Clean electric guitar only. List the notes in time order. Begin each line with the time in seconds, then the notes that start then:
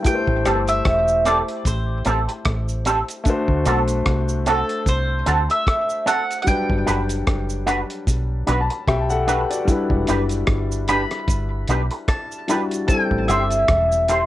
0.45 C4 G4 A4
1.25 C4 G4 A4
2.05 C4 G4 A4
2.28 muted clean electric guitar stroke
2.86 C4 G4 A4
3.66 C4 F#4 A4
4.46 C4 F#4 A4
5.26 C4 F#4 A4
5.49 muted clean electric guitar stroke
6.06 C4 F#4 A4
6.86 D4 F#4 B4
7.67 D4 F#4 B4
8.47 D4 F#4 B4
8.70 muted clean electric guitar stroke
9.27 D4 F#4 B4
10.08 D4 G4 B4
10.88 D4 G4 B4
11.69 D4 G4 B4
11.91 muted clean electric guitar stroke
12.49 D4 G4 B4
13.29 E4 G4 C5
14.09 E4 G4 C5